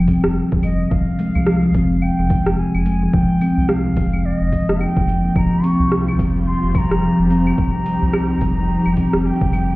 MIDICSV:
0, 0, Header, 1, 6, 480
1, 0, Start_track
1, 0, Tempo, 555556
1, 791, Time_signature, 4, 2, 24, 8
1, 8430, End_track
2, 0, Start_track
2, 0, Title_t, "Bansuri"
2, 0, Program_c, 0, 73
2, 0, Note_on_c, 0, 79, 108
2, 314, Note_off_c, 0, 79, 0
2, 554, Note_on_c, 0, 75, 83
2, 789, Note_on_c, 0, 77, 102
2, 802, Note_off_c, 0, 75, 0
2, 1749, Note_on_c, 0, 79, 100
2, 1762, Note_off_c, 0, 77, 0
2, 2220, Note_off_c, 0, 79, 0
2, 2225, Note_on_c, 0, 80, 97
2, 2707, Note_on_c, 0, 79, 103
2, 2720, Note_off_c, 0, 80, 0
2, 3186, Note_on_c, 0, 77, 97
2, 3199, Note_off_c, 0, 79, 0
2, 3676, Note_on_c, 0, 75, 98
2, 3689, Note_off_c, 0, 77, 0
2, 4157, Note_on_c, 0, 79, 107
2, 4169, Note_off_c, 0, 75, 0
2, 4633, Note_off_c, 0, 79, 0
2, 4642, Note_on_c, 0, 82, 107
2, 4878, Note_on_c, 0, 85, 105
2, 4891, Note_off_c, 0, 82, 0
2, 5362, Note_off_c, 0, 85, 0
2, 5592, Note_on_c, 0, 84, 109
2, 5822, Note_off_c, 0, 84, 0
2, 5822, Note_on_c, 0, 84, 105
2, 5856, Note_on_c, 0, 82, 114
2, 5865, Note_off_c, 0, 84, 0
2, 6302, Note_off_c, 0, 82, 0
2, 6307, Note_on_c, 0, 82, 127
2, 7996, Note_on_c, 0, 79, 104
2, 8009, Note_off_c, 0, 82, 0
2, 8430, Note_off_c, 0, 79, 0
2, 8430, End_track
3, 0, Start_track
3, 0, Title_t, "String section"
3, 0, Program_c, 1, 48
3, 4627, Note_on_c, 1, 60, 70
3, 4627, Note_on_c, 1, 65, 68
3, 4628, Note_on_c, 1, 67, 85
3, 6530, Note_off_c, 1, 65, 0
3, 6552, Note_on_c, 1, 63, 73
3, 8430, Note_off_c, 1, 60, 0
3, 8430, Note_off_c, 1, 63, 0
3, 8430, Note_off_c, 1, 67, 0
3, 8430, End_track
4, 0, Start_track
4, 0, Title_t, "Kalimba"
4, 0, Program_c, 2, 108
4, 70, Note_on_c, 2, 60, 92
4, 204, Note_off_c, 2, 60, 0
4, 452, Note_on_c, 2, 48, 100
4, 546, Note_off_c, 2, 48, 0
4, 549, Note_on_c, 2, 55, 76
4, 684, Note_off_c, 2, 55, 0
4, 1032, Note_on_c, 2, 56, 101
4, 1166, Note_off_c, 2, 56, 0
4, 1171, Note_on_c, 2, 53, 103
4, 1259, Note_off_c, 2, 53, 0
4, 1269, Note_on_c, 2, 53, 106
4, 1404, Note_off_c, 2, 53, 0
4, 1510, Note_on_c, 2, 60, 101
4, 1644, Note_off_c, 2, 60, 0
4, 1892, Note_on_c, 2, 48, 99
4, 1985, Note_off_c, 2, 48, 0
4, 1988, Note_on_c, 2, 56, 76
4, 2124, Note_off_c, 2, 56, 0
4, 2468, Note_on_c, 2, 56, 104
4, 2604, Note_off_c, 2, 56, 0
4, 2610, Note_on_c, 2, 53, 103
4, 2699, Note_off_c, 2, 53, 0
4, 2709, Note_on_c, 2, 53, 103
4, 2844, Note_off_c, 2, 53, 0
4, 2949, Note_on_c, 2, 60, 102
4, 3084, Note_off_c, 2, 60, 0
4, 3333, Note_on_c, 2, 48, 97
4, 3426, Note_off_c, 2, 48, 0
4, 3430, Note_on_c, 2, 56, 76
4, 3564, Note_off_c, 2, 56, 0
4, 3907, Note_on_c, 2, 53, 71
4, 4036, Note_off_c, 2, 53, 0
4, 4053, Note_on_c, 2, 58, 78
4, 4146, Note_off_c, 2, 58, 0
4, 4148, Note_on_c, 2, 63, 84
4, 4284, Note_off_c, 2, 63, 0
4, 4390, Note_on_c, 2, 53, 76
4, 4517, Note_off_c, 2, 53, 0
4, 4533, Note_on_c, 2, 58, 73
4, 4626, Note_off_c, 2, 58, 0
4, 4631, Note_on_c, 2, 53, 103
4, 4765, Note_off_c, 2, 53, 0
4, 4871, Note_on_c, 2, 60, 93
4, 5005, Note_off_c, 2, 60, 0
4, 5255, Note_on_c, 2, 48, 94
4, 5347, Note_off_c, 2, 48, 0
4, 5354, Note_on_c, 2, 55, 74
4, 5487, Note_off_c, 2, 55, 0
4, 5833, Note_on_c, 2, 55, 102
4, 5966, Note_off_c, 2, 55, 0
4, 5973, Note_on_c, 2, 53, 94
4, 6061, Note_off_c, 2, 53, 0
4, 6071, Note_on_c, 2, 53, 103
4, 6205, Note_off_c, 2, 53, 0
4, 6310, Note_on_c, 2, 60, 101
4, 6444, Note_off_c, 2, 60, 0
4, 6693, Note_on_c, 2, 48, 89
4, 6786, Note_off_c, 2, 48, 0
4, 6791, Note_on_c, 2, 55, 78
4, 6925, Note_off_c, 2, 55, 0
4, 7270, Note_on_c, 2, 55, 101
4, 7404, Note_off_c, 2, 55, 0
4, 7413, Note_on_c, 2, 53, 98
4, 7498, Note_off_c, 2, 53, 0
4, 7508, Note_on_c, 2, 53, 100
4, 7644, Note_off_c, 2, 53, 0
4, 7750, Note_on_c, 2, 60, 101
4, 7884, Note_off_c, 2, 60, 0
4, 8129, Note_on_c, 2, 48, 103
4, 8224, Note_off_c, 2, 48, 0
4, 8229, Note_on_c, 2, 55, 82
4, 8364, Note_off_c, 2, 55, 0
4, 8430, End_track
5, 0, Start_track
5, 0, Title_t, "Analog synth bass"
5, 0, Program_c, 3, 38
5, 0, Note_on_c, 3, 29, 88
5, 119, Note_off_c, 3, 29, 0
5, 214, Note_on_c, 3, 29, 85
5, 363, Note_off_c, 3, 29, 0
5, 450, Note_on_c, 3, 29, 97
5, 739, Note_off_c, 3, 29, 0
5, 789, Note_on_c, 3, 29, 101
5, 886, Note_off_c, 3, 29, 0
5, 1171, Note_on_c, 3, 36, 86
5, 1460, Note_off_c, 3, 36, 0
5, 1508, Note_on_c, 3, 29, 103
5, 1819, Note_off_c, 3, 29, 0
5, 1892, Note_on_c, 3, 29, 92
5, 2042, Note_off_c, 3, 29, 0
5, 2130, Note_on_c, 3, 29, 90
5, 2281, Note_off_c, 3, 29, 0
5, 2373, Note_on_c, 3, 29, 93
5, 2661, Note_off_c, 3, 29, 0
5, 2709, Note_on_c, 3, 29, 104
5, 2806, Note_off_c, 3, 29, 0
5, 3091, Note_on_c, 3, 36, 85
5, 3380, Note_off_c, 3, 36, 0
5, 3429, Note_on_c, 3, 29, 93
5, 3739, Note_off_c, 3, 29, 0
5, 3812, Note_on_c, 3, 29, 94
5, 3962, Note_off_c, 3, 29, 0
5, 4051, Note_on_c, 3, 29, 86
5, 4201, Note_off_c, 3, 29, 0
5, 4291, Note_on_c, 3, 29, 97
5, 4580, Note_off_c, 3, 29, 0
5, 4630, Note_on_c, 3, 29, 102
5, 4727, Note_off_c, 3, 29, 0
5, 5010, Note_on_c, 3, 36, 86
5, 5299, Note_off_c, 3, 36, 0
5, 5349, Note_on_c, 3, 29, 102
5, 5659, Note_off_c, 3, 29, 0
5, 5733, Note_on_c, 3, 29, 85
5, 5883, Note_off_c, 3, 29, 0
5, 5975, Note_on_c, 3, 29, 87
5, 6123, Note_off_c, 3, 29, 0
5, 6217, Note_on_c, 3, 29, 92
5, 6503, Note_off_c, 3, 29, 0
5, 6551, Note_on_c, 3, 29, 106
5, 6647, Note_off_c, 3, 29, 0
5, 6933, Note_on_c, 3, 36, 85
5, 7221, Note_off_c, 3, 36, 0
5, 7272, Note_on_c, 3, 29, 100
5, 7580, Note_off_c, 3, 29, 0
5, 7659, Note_on_c, 3, 29, 93
5, 7805, Note_off_c, 3, 29, 0
5, 7896, Note_on_c, 3, 29, 83
5, 8044, Note_off_c, 3, 29, 0
5, 8135, Note_on_c, 3, 29, 92
5, 8422, Note_off_c, 3, 29, 0
5, 8430, End_track
6, 0, Start_track
6, 0, Title_t, "Drums"
6, 66, Note_on_c, 9, 46, 89
6, 68, Note_on_c, 9, 36, 63
6, 68, Note_on_c, 9, 69, 82
6, 153, Note_off_c, 9, 46, 0
6, 155, Note_off_c, 9, 36, 0
6, 155, Note_off_c, 9, 69, 0
6, 205, Note_on_c, 9, 37, 85
6, 208, Note_on_c, 9, 69, 49
6, 292, Note_off_c, 9, 37, 0
6, 294, Note_off_c, 9, 69, 0
6, 310, Note_on_c, 9, 69, 35
6, 396, Note_off_c, 9, 69, 0
6, 450, Note_on_c, 9, 36, 106
6, 537, Note_off_c, 9, 36, 0
6, 544, Note_on_c, 9, 46, 92
6, 544, Note_on_c, 9, 75, 78
6, 546, Note_on_c, 9, 69, 77
6, 630, Note_off_c, 9, 46, 0
6, 630, Note_off_c, 9, 75, 0
6, 632, Note_off_c, 9, 69, 0
6, 691, Note_on_c, 9, 69, 48
6, 778, Note_off_c, 9, 69, 0
6, 787, Note_on_c, 9, 69, 34
6, 789, Note_on_c, 9, 36, 127
6, 874, Note_off_c, 9, 69, 0
6, 875, Note_off_c, 9, 36, 0
6, 1026, Note_on_c, 9, 46, 87
6, 1029, Note_on_c, 9, 69, 83
6, 1113, Note_off_c, 9, 46, 0
6, 1115, Note_off_c, 9, 69, 0
6, 1168, Note_on_c, 9, 75, 70
6, 1171, Note_on_c, 9, 69, 47
6, 1255, Note_off_c, 9, 75, 0
6, 1257, Note_off_c, 9, 69, 0
6, 1266, Note_on_c, 9, 37, 85
6, 1268, Note_on_c, 9, 69, 35
6, 1352, Note_off_c, 9, 37, 0
6, 1354, Note_off_c, 9, 69, 0
6, 1506, Note_on_c, 9, 46, 94
6, 1508, Note_on_c, 9, 36, 109
6, 1509, Note_on_c, 9, 69, 88
6, 1593, Note_off_c, 9, 46, 0
6, 1595, Note_off_c, 9, 36, 0
6, 1595, Note_off_c, 9, 69, 0
6, 1652, Note_on_c, 9, 69, 51
6, 1738, Note_off_c, 9, 69, 0
6, 1744, Note_on_c, 9, 75, 73
6, 1746, Note_on_c, 9, 69, 34
6, 1830, Note_off_c, 9, 75, 0
6, 1833, Note_off_c, 9, 69, 0
6, 1987, Note_on_c, 9, 46, 78
6, 1989, Note_on_c, 9, 36, 109
6, 1989, Note_on_c, 9, 69, 78
6, 2073, Note_off_c, 9, 46, 0
6, 2075, Note_off_c, 9, 36, 0
6, 2075, Note_off_c, 9, 69, 0
6, 2129, Note_on_c, 9, 37, 84
6, 2131, Note_on_c, 9, 69, 50
6, 2215, Note_off_c, 9, 37, 0
6, 2218, Note_off_c, 9, 69, 0
6, 2232, Note_on_c, 9, 69, 38
6, 2318, Note_off_c, 9, 69, 0
6, 2372, Note_on_c, 9, 75, 77
6, 2458, Note_off_c, 9, 75, 0
6, 2469, Note_on_c, 9, 46, 80
6, 2471, Note_on_c, 9, 69, 77
6, 2555, Note_off_c, 9, 46, 0
6, 2558, Note_off_c, 9, 69, 0
6, 2612, Note_on_c, 9, 69, 47
6, 2699, Note_off_c, 9, 69, 0
6, 2708, Note_on_c, 9, 36, 125
6, 2711, Note_on_c, 9, 69, 34
6, 2795, Note_off_c, 9, 36, 0
6, 2797, Note_off_c, 9, 69, 0
6, 2949, Note_on_c, 9, 46, 81
6, 2949, Note_on_c, 9, 75, 69
6, 2951, Note_on_c, 9, 69, 85
6, 3035, Note_off_c, 9, 46, 0
6, 3035, Note_off_c, 9, 75, 0
6, 3038, Note_off_c, 9, 69, 0
6, 3093, Note_on_c, 9, 69, 45
6, 3179, Note_off_c, 9, 69, 0
6, 3187, Note_on_c, 9, 37, 82
6, 3189, Note_on_c, 9, 69, 36
6, 3273, Note_off_c, 9, 37, 0
6, 3275, Note_off_c, 9, 69, 0
6, 3426, Note_on_c, 9, 46, 90
6, 3429, Note_on_c, 9, 36, 98
6, 3429, Note_on_c, 9, 69, 86
6, 3513, Note_off_c, 9, 46, 0
6, 3515, Note_off_c, 9, 36, 0
6, 3515, Note_off_c, 9, 69, 0
6, 3571, Note_on_c, 9, 75, 76
6, 3573, Note_on_c, 9, 69, 47
6, 3657, Note_off_c, 9, 75, 0
6, 3660, Note_off_c, 9, 69, 0
6, 3670, Note_on_c, 9, 69, 33
6, 3756, Note_off_c, 9, 69, 0
6, 3909, Note_on_c, 9, 36, 63
6, 3909, Note_on_c, 9, 46, 84
6, 3911, Note_on_c, 9, 69, 73
6, 3995, Note_off_c, 9, 46, 0
6, 3996, Note_off_c, 9, 36, 0
6, 3998, Note_off_c, 9, 69, 0
6, 4054, Note_on_c, 9, 37, 80
6, 4057, Note_on_c, 9, 69, 48
6, 4141, Note_off_c, 9, 37, 0
6, 4143, Note_off_c, 9, 69, 0
6, 4152, Note_on_c, 9, 75, 85
6, 4155, Note_on_c, 9, 69, 36
6, 4239, Note_off_c, 9, 75, 0
6, 4241, Note_off_c, 9, 69, 0
6, 4290, Note_on_c, 9, 36, 111
6, 4377, Note_off_c, 9, 36, 0
6, 4392, Note_on_c, 9, 46, 80
6, 4394, Note_on_c, 9, 69, 81
6, 4478, Note_off_c, 9, 46, 0
6, 4481, Note_off_c, 9, 69, 0
6, 4536, Note_on_c, 9, 69, 49
6, 4622, Note_off_c, 9, 69, 0
6, 4629, Note_on_c, 9, 36, 119
6, 4632, Note_on_c, 9, 75, 82
6, 4634, Note_on_c, 9, 69, 34
6, 4715, Note_off_c, 9, 36, 0
6, 4718, Note_off_c, 9, 75, 0
6, 4720, Note_off_c, 9, 69, 0
6, 4871, Note_on_c, 9, 46, 80
6, 4873, Note_on_c, 9, 69, 79
6, 4957, Note_off_c, 9, 46, 0
6, 4959, Note_off_c, 9, 69, 0
6, 5015, Note_on_c, 9, 69, 45
6, 5101, Note_off_c, 9, 69, 0
6, 5112, Note_on_c, 9, 37, 77
6, 5114, Note_on_c, 9, 69, 34
6, 5198, Note_off_c, 9, 37, 0
6, 5201, Note_off_c, 9, 69, 0
6, 5256, Note_on_c, 9, 75, 77
6, 5343, Note_off_c, 9, 75, 0
6, 5349, Note_on_c, 9, 36, 101
6, 5352, Note_on_c, 9, 46, 88
6, 5354, Note_on_c, 9, 69, 82
6, 5436, Note_off_c, 9, 36, 0
6, 5438, Note_off_c, 9, 46, 0
6, 5441, Note_off_c, 9, 69, 0
6, 5498, Note_on_c, 9, 69, 49
6, 5584, Note_off_c, 9, 69, 0
6, 5593, Note_on_c, 9, 69, 32
6, 5680, Note_off_c, 9, 69, 0
6, 5830, Note_on_c, 9, 36, 102
6, 5832, Note_on_c, 9, 46, 89
6, 5832, Note_on_c, 9, 75, 79
6, 5834, Note_on_c, 9, 69, 75
6, 5916, Note_off_c, 9, 36, 0
6, 5918, Note_off_c, 9, 46, 0
6, 5918, Note_off_c, 9, 75, 0
6, 5920, Note_off_c, 9, 69, 0
6, 5973, Note_on_c, 9, 37, 75
6, 5976, Note_on_c, 9, 69, 47
6, 6060, Note_off_c, 9, 37, 0
6, 6062, Note_off_c, 9, 69, 0
6, 6075, Note_on_c, 9, 69, 36
6, 6162, Note_off_c, 9, 69, 0
6, 6311, Note_on_c, 9, 46, 84
6, 6314, Note_on_c, 9, 69, 77
6, 6398, Note_off_c, 9, 46, 0
6, 6400, Note_off_c, 9, 69, 0
6, 6453, Note_on_c, 9, 75, 83
6, 6455, Note_on_c, 9, 69, 48
6, 6539, Note_off_c, 9, 75, 0
6, 6541, Note_off_c, 9, 69, 0
6, 6550, Note_on_c, 9, 36, 118
6, 6555, Note_on_c, 9, 69, 32
6, 6636, Note_off_c, 9, 36, 0
6, 6641, Note_off_c, 9, 69, 0
6, 6790, Note_on_c, 9, 46, 89
6, 6792, Note_on_c, 9, 69, 76
6, 6876, Note_off_c, 9, 46, 0
6, 6879, Note_off_c, 9, 69, 0
6, 6931, Note_on_c, 9, 69, 42
6, 7017, Note_off_c, 9, 69, 0
6, 7028, Note_on_c, 9, 37, 76
6, 7028, Note_on_c, 9, 75, 80
6, 7030, Note_on_c, 9, 69, 32
6, 7114, Note_off_c, 9, 37, 0
6, 7114, Note_off_c, 9, 75, 0
6, 7117, Note_off_c, 9, 69, 0
6, 7267, Note_on_c, 9, 46, 90
6, 7269, Note_on_c, 9, 69, 78
6, 7271, Note_on_c, 9, 36, 90
6, 7353, Note_off_c, 9, 46, 0
6, 7356, Note_off_c, 9, 69, 0
6, 7358, Note_off_c, 9, 36, 0
6, 7413, Note_on_c, 9, 69, 45
6, 7499, Note_off_c, 9, 69, 0
6, 7515, Note_on_c, 9, 69, 33
6, 7601, Note_off_c, 9, 69, 0
6, 7651, Note_on_c, 9, 75, 77
6, 7738, Note_off_c, 9, 75, 0
6, 7748, Note_on_c, 9, 46, 87
6, 7751, Note_on_c, 9, 69, 69
6, 7752, Note_on_c, 9, 36, 57
6, 7835, Note_off_c, 9, 46, 0
6, 7837, Note_off_c, 9, 69, 0
6, 7839, Note_off_c, 9, 36, 0
6, 7891, Note_on_c, 9, 37, 75
6, 7894, Note_on_c, 9, 69, 43
6, 7978, Note_off_c, 9, 37, 0
6, 7980, Note_off_c, 9, 69, 0
6, 7995, Note_on_c, 9, 69, 35
6, 8081, Note_off_c, 9, 69, 0
6, 8134, Note_on_c, 9, 36, 100
6, 8220, Note_off_c, 9, 36, 0
6, 8235, Note_on_c, 9, 46, 82
6, 8235, Note_on_c, 9, 75, 83
6, 8237, Note_on_c, 9, 69, 77
6, 8321, Note_off_c, 9, 46, 0
6, 8321, Note_off_c, 9, 75, 0
6, 8323, Note_off_c, 9, 69, 0
6, 8380, Note_on_c, 9, 69, 43
6, 8430, Note_off_c, 9, 69, 0
6, 8430, End_track
0, 0, End_of_file